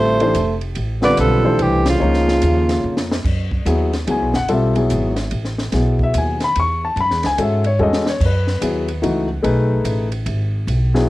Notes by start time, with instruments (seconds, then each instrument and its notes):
Already playing: upright bass A1, grand piano D3 G3 C4 F4 C5, trombone A3, alto saxophone C5
0.20 grand piano E3 A3 D4 G4 C5, ride
0.34 upright bass F1, hi-hat pedal, ride
0.61 ride
0.75 upright bass A1, ride
1.02 grand piano D3 G3 C4 F4 B4, trombone B3, alto saxophone D5, snare
1.17 upright bass B1, trombone F3, alto saxophone A4, hi-hat pedal, ride
1.44 grand piano E3 A3 D4 G4 C5
1.59 upright bass C2, trombone E3, alto saxophone G4, ride
1.86 trombone C#3, alto saxophone F4, snare, ride
2.00 upright bass C#2, grand piano F3 A#3 D#4 G#4 C#5
2.14 snare
2.28 snare
2.42 upright bass D#2, hi-hat pedal, ride
2.69 snare, ride
2.84 upright bass F2
2.97 snare
3.12 snare
3.24 upright bass F#2, kick, crash
3.51 kick
3.65 upright bass D#2, grand piano F#3 B3 E4 G#4, hi-hat pedal, ride
3.93 snare, ride
4.07 upright bass C#2, grand piano F#3 B3 E4 G#4 G#5, ride
4.22 upright bass B1
4.34 upright bass F#1, grand piano F#5, snare
4.48 upright bass B1, grand piano G3 C4 F4 A4 E5, ride
4.76 grand piano F#3 B3 E4 G#4, ride
4.90 upright bass G#1, hi-hat pedal, ride
5.16 snare, ride
5.31 upright bass A1, ride
5.45 snare
5.59 snare
5.72 upright bass B1, grand piano F#3 B3 E4 G#4, snare, ride
5.99 kick
6.03 grand piano E5
6.14 upright bass D#2, hi-hat pedal, ride
6.18 grand piano G#5
6.40 grand piano B5, snare, ride
6.56 upright bass E2, ride
6.60 grand piano C#6
6.85 grand piano A5
6.96 upright bass F#2, ride
7.01 grand piano B5
7.11 upright bass E2, snare
7.23 upright bass C#2, grand piano G#5, snare, ride
7.38 upright bass G#2, grand piano G#3 C#4 F#4 A4, hi-hat pedal, ride
7.42 grand piano E5
7.64 grand piano C#5, ride
7.79 upright bass E2, grand piano G#3 C#4 F#4 A4 D#5, mid tom
7.93 snare
8.06 grand piano C#5, snare
8.20 upright bass F#2, kick, crash
8.26 grand piano B4
8.47 snare
8.61 upright bass D#2, grand piano F#3 B3 E4 G#4, hi-hat pedal, ride
8.88 ride
9.02 upright bass C#2, grand piano E3 A3 D#4 F#4, ride
9.43 upright bass B1, grand piano A3 D#4 G#4 B4, ride
9.84 upright bass A1, hi-hat pedal, ride
10.12 ride
10.26 upright bass G#1, ride
10.67 upright bass B1, ride
10.94 grand piano F#3 B3 E4 G#4, snare